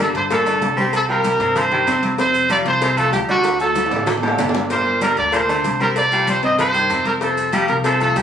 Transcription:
0.00 D3 G3 D4 A4 D5
0.14 G2 C5, cowbell, high conga, maracas
0.30 A#2 F3 A#3 A4 A#4, cowbell, high conga, low agogo, maracas
0.46 D3 A3 D4 D5, high conga, low agogo, maracas
0.61 C2, cowbell, high conga, low timbale, maracas
0.77 G3 C4 G4 C5 C6, high conga, maracas
0.93 A4, cowbell, high conga, low agogo, maracas
1.09 F3 G3 G4 A#4 G5, high conga
1.24 cowbell, high conga, low agogo, maracas
1.39 G2 C3 C4 C5, cowbell, high conga, maracas
1.55 F3 C5, cowbell, high conga, low conga, low agogo, maracas
1.71 D#3 G3 G4 G5, cowbell, high conga, low conga
1.87 F2 C3 C4 C5, cowbell, high conga, low agogo, maracas
2.03 cowbell, high conga, maracas
2.18 C3 C4 C5, cowbell, high conga, maracas
2.34 high conga, low agogo, maracas
2.50 F3 G3 F4 D5 F5, cowbell, high conga, low agogo, maracas
2.65 C2 C5, cowbell, high conga, maracas
2.81 C3 F3 C4 C5, cowbell, high conga, low agogo, maracas
2.97 F3 A3 F4 A4 F5, high conga, low agogo, maracas
3.12 D2 G4, cowbell, high conga, low timbale, maracas
3.28 G3 D4 F#4 D5 D6, high conga, maracas
3.44 cowbell, high conga, high timbale, low agogo, maracas
3.60 F#3 A3 A4 A5, high conga, maracas
3.75 cowbell, high conga, high timbale, low agogo, maracas
3.86 high timbale
3.91 A1 D3 D4 D5, cowbell, high conga, maracas
3.96 low timbale
4.07 F#3, cowbell, high bongo, high conga, low conga, low agogo, maracas
4.18 low timbale
4.22 D3 A3 A4 A5, cowbell, low bongo, high conga
4.28 low timbale
4.38 G1 D3 D4 D5, cowbell, low bongo, high conga, low timbale, low agogo, maracas
4.49 low timbale
4.55 cowbell, low bongo, high conga, maracas
4.59 low timbale
4.70 A#2 A#3 A#4 C5, cowbell, high conga, maracas
4.86 high conga, low agogo
5.01 D3 G3 D4 A#4 D5, cowbell, high conga, low agogo, maracas
5.17 D2 D5, cowbell, high conga, maracas
5.32 A#2 F3 A#3 A#4 C5, cowbell, high conga, low agogo, maracas
5.49 D3 A3 D4 D5, high conga, low agogo, maracas
5.64 C2, cowbell, high conga, maracas
5.80 G3 C4 A#4 C5 C6, high conga, maracas
5.96 D5, cowbell, high conga, low agogo, maracas
6.12 F3 G3 G4 G5, high conga, maracas
6.27 C5, cowbell, high conga, low agogo, maracas
6.43 G2 C3 C4 C5 D#5, cowbell, high conga, maracas
6.58 F3 C5, cowbell, high conga, low conga, low agogo, maracas
6.74 D#3 G3 G4 G5, cowbell, high conga, maracas
6.90 F2 C3 C4 C5, cowbell, high conga, low agogo, maracas
7.05 A#4, cowbell, high conga, maracas
7.21 C3 C4 A4 C5, cowbell, high conga, maracas
7.37 high conga, low agogo, maracas
7.53 F3 G3 F4 G4 F5, cowbell, high conga, low agogo, maracas
7.68 C2 A#4, cowbell, high conga, maracas
7.84 C3 F3 C4 A4 C5, cowbell, high conga, low agogo, maracas
8.00 F3 A3 F4 A4 F5, high conga, low agogo, maracas
8.15 D2 G4, cowbell, high conga, low timbale, maracas

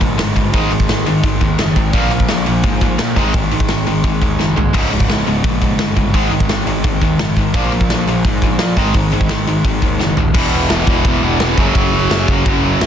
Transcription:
Already playing: A#1 C#2 G#2 C#3
0.01 C#2 G#2, kick, open hi-hat
0.19 G1 C#2 G#2, snare, open hi-hat
0.36 C#2 G#2, kick, open hi-hat
0.53 G#1 G#2 D#3 G#3, kick, open hi-hat
0.71 G#1 G#2 D#3, open hi-hat
0.80 kick
0.89 G#1 G#2 D#3, snare, open hi-hat
1.06 G#1 G#2 D#3, open hi-hat
1.23 G#1 G#2 D#3, kick, open hi-hat
1.41 D#2 G#2 D#3, kick, open hi-hat
1.58 F#1 G#2 D#3, snare, open hi-hat
1.76 G#1 G#2 D#3, kick, open hi-hat
1.93 A#1 A#2 F3 A#3, kick, open hi-hat
2.11 A#2 F3, open hi-hat
2.20 kick
2.28 A#1 A#2 F3, snare, open hi-hat
2.46 A#1 A#2 F3, open hi-hat
2.63 G#2 A#2 F3, kick, open hi-hat
2.81 A#2 F3, kick, open hi-hat
2.99 A#2 F3, snare, open hi-hat
3.16 G#1 G#2 D#3 G#3, kick, open hi-hat
3.34 G#1 G#2 D#3, kick, open hi-hat
3.51 G#1 G#2 D#3, open hi-hat
3.60 kick
3.68 G#1 G#2 D#3, snare, open hi-hat
3.86 G#1 G#2 D#3, open hi-hat
4.03 G#1 G#2 D#3, kick, open hi-hat
4.21 D#2 G#2 D#3, kick, open hi-hat
4.39 F#1 G#2 D#3, snare
4.56 G#1 G#2 D#3, floor tom
4.73 C#1 C#2 G#2 C#3, kick, crash
4.91 C#2 G#2, open hi-hat
5.00 kick
5.08 C#1 C#2 G#2, snare, open hi-hat
5.26 C#1 C#2 G#2, open hi-hat
5.44 A#1 C#2 G#2, kick, open hi-hat
5.62 C#2 G#2, kick, open hi-hat
5.78 G1 C#2 G#2, snare, open hi-hat
5.96 C#2 G#2, kick, open hi-hat
6.14 G#1 G#2 D#3 G#3, kick, open hi-hat
6.31 G#1 G#2 D#3, open hi-hat
6.40 kick
6.48 G#1 G#2 D#3, snare, open hi-hat
6.65 G#1 G#2 D#3, open hi-hat
6.84 G#1 G#2 D#3, kick, open hi-hat
7.01 D#2 G#2 D#3, kick, open hi-hat
7.19 F#1 G#2 D#3, snare, open hi-hat
7.37 G#1 G#2 D#3, kick, open hi-hat
7.54 A#1 A#2 F3 A#3, kick, open hi-hat
7.72 A#2 F3, open hi-hat
7.81 kick
7.89 A#1 A#2 F3, snare, open hi-hat
8.06 A#1 A#2 F3, open hi-hat
8.25 G#2 A#2 F3, kick, open hi-hat
8.42 A#2 F3, kick, open hi-hat
8.59 A#2 F3, snare, open hi-hat
8.76 G#1 G#2 D#3 G#3, kick, open hi-hat
8.94 G#1 G#2 D#3, kick, open hi-hat
9.12 G#1 G#2 D#3, open hi-hat
9.21 kick
9.29 G#1 G#2 D#3, snare, open hi-hat
9.47 G#1 G#2 D#3, open hi-hat
9.64 G#1 G#2 D#3, kick, open hi-hat
9.82 D#2 G#2 D#3, kick, open hi-hat
10.00 F#1 G#2 D#3, snare
10.17 D#1 G#2 D#3, floor tom
10.34 E1 E2 B2 E3, kick, crash
10.53 E1
10.70 E1, snare, crash
10.87 E1, kick
11.05 E1, kick, crash
11.22 E1 E2 B2 E3
11.39 E1 E2 B2 E3, snare, crash
11.57 F#1 F#2 C#3 F#3, kick
11.75 F#1, kick, crash
11.92 F#1
12.11 F#1, snare, crash
12.28 F#1, kick
12.45 F#1 F#2 C#3 F#3, kick, crash
12.64 F#2 C#3 F#3
12.81 F#1 F#2 C#3, snare, crash

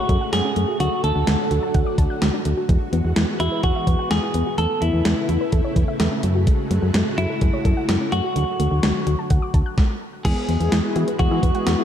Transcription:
Already playing: C#3 G#3 A3 F#4
0.09 F#2 A4, kick, closed hi-hat
0.21 F#5
0.33 F#2 G#3 G#4, snare, closed hi-hat
0.45 C#4
0.56 F#2 A3, closed hi-hat
0.68 F#4
0.80 D2 D3 F#3 F#4, closed hi-hat
1.04 D2 A3 A4, closed hi-hat
1.16 D2
1.27 D2 D4, snare, closed hi-hat
1.51 D2 F#4, closed hi-hat
1.63 A5
1.74 D2 F#5, kick, closed hi-hat
1.86 D6
1.98 D2 A5, kick, closed hi-hat
2.10 F#6
2.22 D2 F#3, snare, closed hi-hat
2.34 D4
2.45 D2 A3, closed hi-hat
2.57 F#4
2.69 E2 E3 G#3 B3, kick, closed hi-hat
2.93 E2 B3, closed hi-hat
3.05 E2
3.16 E2 E4, snare, closed hi-hat
3.40 E2 E4 F#4, closed hi-hat
3.52 B4
3.63 E2 F#4 G#4, kick, closed hi-hat
3.75 E5
3.87 E2 B4, kick, closed hi-hat
3.99 F#5
4.11 E2 G#3 G#4, snare, closed hi-hat
4.23 E4
4.34 E2 B3, closed hi-hat
4.46 F#4
4.58 E2 C#3 A3 E4 A4, closed hi-hat
4.82 E2 B3 E4, closed hi-hat
4.94 E2
5.05 E2 C#4, snare, closed hi-hat
5.29 E2 E4, closed hi-hat
5.41 B4
5.52 E2 A4, kick, closed hi-hat
5.64 C#5
5.76 E2 B4, kick, closed hi-hat
5.88 E5
6.00 E2 A3, snare, closed hi-hat
6.12 C#4
6.23 F#2 G#3 A3 F#4, closed hi-hat
6.35 F#4
6.47 G#3, kick, closed hi-hat
6.71 F#2 A3, closed hi-hat
6.82 F#2
6.94 F#2 C#4, snare, closed hi-hat
7.18 F#2 E4 F#4, closed hi-hat
7.30 A4
7.41 F#2 G#4, kick, closed hi-hat
7.53 C#5
7.65 F#2 A4, kick, closed hi-hat
7.77 F#5
7.89 F#2 G#3, snare, closed hi-hat
8.01 C#4
8.12 F#2 A3 F#4, closed hi-hat
8.24 F#4
8.36 D2 D3 F#3, closed hi-hat
8.60 D2 A3, closed hi-hat
8.71 D2
8.83 D2 D4, snare, closed hi-hat
9.07 D2 F#4, closed hi-hat
9.19 A5
9.30 D2 F#5, kick, closed hi-hat
9.42 D6
9.54 D2 A5, kick, closed hi-hat
9.66 F#6
9.78 kick, snare
10.25 E2 E3 G#3 B3 E4 F#4 G#4, kick, closed hi-hat, crash
10.49 E2 B3, closed hi-hat
10.60 E2 G#3 B3 E4 G#4, closed hi-hat
10.72 E2 E4, snare, closed hi-hat
10.84 G#3 B3 E4 G#4
10.96 E3 F#4, closed hi-hat
11.08 B4, closed hi-hat
11.19 E2 G#3 B3 E4 F#4 G#4, kick, closed hi-hat
11.31 E3 E5
11.43 E2 B4, kick, closed hi-hat
11.55 G#3 B3 E4 G#4 F#5, closed hi-hat
11.67 E2 G#3, snare, closed hi-hat
11.79 G#3 B3 E4 G#4

